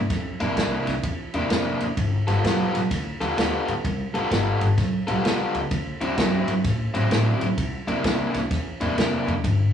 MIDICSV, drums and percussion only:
0, 0, Header, 1, 2, 480
1, 0, Start_track
1, 0, Tempo, 467290
1, 104, Time_signature, 4, 2, 24, 8
1, 9997, End_track
2, 0, Start_track
2, 0, Title_t, "Drums"
2, 103, Note_on_c, 9, 36, 106
2, 103, Note_on_c, 9, 51, 84
2, 114, Note_on_c, 9, 38, 32
2, 206, Note_off_c, 9, 36, 0
2, 206, Note_off_c, 9, 51, 0
2, 216, Note_off_c, 9, 38, 0
2, 412, Note_on_c, 9, 51, 61
2, 515, Note_off_c, 9, 51, 0
2, 583, Note_on_c, 9, 36, 78
2, 584, Note_on_c, 9, 51, 83
2, 594, Note_on_c, 9, 38, 108
2, 685, Note_off_c, 9, 36, 0
2, 686, Note_off_c, 9, 51, 0
2, 697, Note_off_c, 9, 38, 0
2, 894, Note_on_c, 9, 51, 58
2, 904, Note_on_c, 9, 38, 33
2, 996, Note_off_c, 9, 51, 0
2, 1007, Note_off_c, 9, 38, 0
2, 1061, Note_on_c, 9, 51, 82
2, 1063, Note_on_c, 9, 36, 105
2, 1164, Note_off_c, 9, 51, 0
2, 1166, Note_off_c, 9, 36, 0
2, 1373, Note_on_c, 9, 51, 59
2, 1475, Note_off_c, 9, 51, 0
2, 1542, Note_on_c, 9, 51, 82
2, 1552, Note_on_c, 9, 38, 113
2, 1645, Note_off_c, 9, 51, 0
2, 1655, Note_off_c, 9, 38, 0
2, 1854, Note_on_c, 9, 51, 63
2, 1957, Note_off_c, 9, 51, 0
2, 2025, Note_on_c, 9, 36, 113
2, 2025, Note_on_c, 9, 51, 87
2, 2128, Note_off_c, 9, 36, 0
2, 2128, Note_off_c, 9, 51, 0
2, 2339, Note_on_c, 9, 51, 66
2, 2350, Note_on_c, 9, 38, 33
2, 2442, Note_off_c, 9, 51, 0
2, 2452, Note_off_c, 9, 38, 0
2, 2509, Note_on_c, 9, 36, 82
2, 2512, Note_on_c, 9, 51, 88
2, 2522, Note_on_c, 9, 38, 110
2, 2611, Note_off_c, 9, 36, 0
2, 2614, Note_off_c, 9, 51, 0
2, 2625, Note_off_c, 9, 38, 0
2, 2823, Note_on_c, 9, 51, 69
2, 2833, Note_on_c, 9, 38, 33
2, 2926, Note_off_c, 9, 51, 0
2, 2936, Note_off_c, 9, 38, 0
2, 2988, Note_on_c, 9, 36, 104
2, 2989, Note_on_c, 9, 51, 93
2, 3000, Note_on_c, 9, 38, 33
2, 3091, Note_off_c, 9, 36, 0
2, 3092, Note_off_c, 9, 51, 0
2, 3102, Note_off_c, 9, 38, 0
2, 3300, Note_on_c, 9, 51, 61
2, 3403, Note_off_c, 9, 51, 0
2, 3470, Note_on_c, 9, 51, 84
2, 3481, Note_on_c, 9, 38, 109
2, 3573, Note_off_c, 9, 51, 0
2, 3583, Note_off_c, 9, 38, 0
2, 3783, Note_on_c, 9, 51, 60
2, 3886, Note_off_c, 9, 51, 0
2, 3950, Note_on_c, 9, 36, 107
2, 3952, Note_on_c, 9, 51, 80
2, 4053, Note_off_c, 9, 36, 0
2, 4054, Note_off_c, 9, 51, 0
2, 4261, Note_on_c, 9, 51, 59
2, 4364, Note_off_c, 9, 51, 0
2, 4429, Note_on_c, 9, 36, 77
2, 4432, Note_on_c, 9, 51, 83
2, 4442, Note_on_c, 9, 38, 105
2, 4532, Note_off_c, 9, 36, 0
2, 4534, Note_off_c, 9, 51, 0
2, 4545, Note_off_c, 9, 38, 0
2, 4737, Note_on_c, 9, 51, 65
2, 4840, Note_off_c, 9, 51, 0
2, 4907, Note_on_c, 9, 51, 78
2, 4908, Note_on_c, 9, 36, 111
2, 4917, Note_on_c, 9, 38, 31
2, 5009, Note_off_c, 9, 51, 0
2, 5010, Note_off_c, 9, 36, 0
2, 5020, Note_off_c, 9, 38, 0
2, 5217, Note_on_c, 9, 51, 60
2, 5320, Note_off_c, 9, 51, 0
2, 5391, Note_on_c, 9, 51, 82
2, 5401, Note_on_c, 9, 38, 112
2, 5493, Note_off_c, 9, 51, 0
2, 5504, Note_off_c, 9, 38, 0
2, 5697, Note_on_c, 9, 51, 61
2, 5799, Note_off_c, 9, 51, 0
2, 5865, Note_on_c, 9, 51, 84
2, 5867, Note_on_c, 9, 36, 106
2, 5968, Note_off_c, 9, 51, 0
2, 5969, Note_off_c, 9, 36, 0
2, 6176, Note_on_c, 9, 51, 62
2, 6279, Note_off_c, 9, 51, 0
2, 6344, Note_on_c, 9, 51, 85
2, 6346, Note_on_c, 9, 36, 76
2, 6355, Note_on_c, 9, 38, 116
2, 6447, Note_off_c, 9, 51, 0
2, 6449, Note_off_c, 9, 36, 0
2, 6457, Note_off_c, 9, 38, 0
2, 6654, Note_on_c, 9, 51, 65
2, 6757, Note_off_c, 9, 51, 0
2, 6824, Note_on_c, 9, 51, 89
2, 6826, Note_on_c, 9, 36, 108
2, 6835, Note_on_c, 9, 38, 33
2, 6927, Note_off_c, 9, 51, 0
2, 6928, Note_off_c, 9, 36, 0
2, 6937, Note_off_c, 9, 38, 0
2, 7135, Note_on_c, 9, 51, 64
2, 7238, Note_off_c, 9, 51, 0
2, 7303, Note_on_c, 9, 51, 81
2, 7314, Note_on_c, 9, 38, 113
2, 7406, Note_off_c, 9, 51, 0
2, 7416, Note_off_c, 9, 38, 0
2, 7613, Note_on_c, 9, 51, 64
2, 7716, Note_off_c, 9, 51, 0
2, 7783, Note_on_c, 9, 51, 87
2, 7784, Note_on_c, 9, 36, 118
2, 7886, Note_off_c, 9, 36, 0
2, 7886, Note_off_c, 9, 51, 0
2, 8095, Note_on_c, 9, 51, 64
2, 8197, Note_off_c, 9, 51, 0
2, 8260, Note_on_c, 9, 51, 81
2, 8262, Note_on_c, 9, 36, 83
2, 8270, Note_on_c, 9, 38, 107
2, 8363, Note_off_c, 9, 51, 0
2, 8365, Note_off_c, 9, 36, 0
2, 8373, Note_off_c, 9, 38, 0
2, 8571, Note_on_c, 9, 51, 63
2, 8581, Note_on_c, 9, 38, 32
2, 8673, Note_off_c, 9, 51, 0
2, 8684, Note_off_c, 9, 38, 0
2, 8738, Note_on_c, 9, 51, 79
2, 8740, Note_on_c, 9, 36, 113
2, 8749, Note_on_c, 9, 38, 32
2, 8841, Note_off_c, 9, 51, 0
2, 8842, Note_off_c, 9, 36, 0
2, 8851, Note_off_c, 9, 38, 0
2, 9048, Note_on_c, 9, 51, 59
2, 9150, Note_off_c, 9, 51, 0
2, 9222, Note_on_c, 9, 51, 82
2, 9233, Note_on_c, 9, 38, 107
2, 9325, Note_off_c, 9, 51, 0
2, 9335, Note_off_c, 9, 38, 0
2, 9535, Note_on_c, 9, 51, 58
2, 9637, Note_off_c, 9, 51, 0
2, 9698, Note_on_c, 9, 36, 110
2, 9700, Note_on_c, 9, 51, 85
2, 9801, Note_off_c, 9, 36, 0
2, 9802, Note_off_c, 9, 51, 0
2, 9997, End_track
0, 0, End_of_file